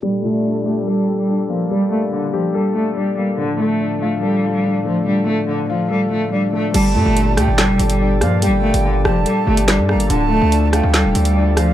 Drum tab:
CC |----------------|----------------|----------------|----------------|
HH |----------------|----------------|----------------|----------------|
CP |----------------|----------------|----------------|----------------|
SD |----------------|----------------|----------------|----------------|

CC |x---------------|----------------|----------------|
HH |x---x-x-x-xx--x-|x--x----x--xx--x|x---x-x-x-xx--x-|
CP |--------x-------|------------x---|--------x-------|
SD |------r-o-----r-|------r-----o-r-|------r-o-----r-|